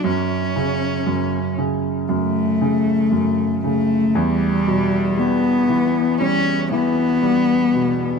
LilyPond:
<<
  \new Staff \with { instrumentName = "Cello" } { \time 4/4 \key fis \phrygian \tempo 4 = 59 cis'4. r8 a4. a8 | g4 b4 cis'8 b4. | }
  \new Staff \with { instrumentName = "Grand piano" } { \clef bass \time 4/4 \key fis \phrygian fis,8 cis8 fis,8 cis8 fis,8 cis8 fis,8 cis8 | e,8 b,8 g8 e8 g8 e8 g8 b,8 | }
>>